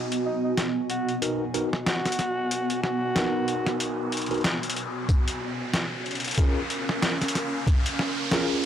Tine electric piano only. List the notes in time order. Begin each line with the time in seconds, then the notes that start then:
1.22 B3 D#4 F#4 A#4
1.54 B3 D#4 F#4 A#4
3.16 B3 D#4 F#4 A#4
4.31 B3 D#4 F#4 A#4
6.38 C#4 F4 G#4 A#4
8.31 C#4 F4 G#4 A#4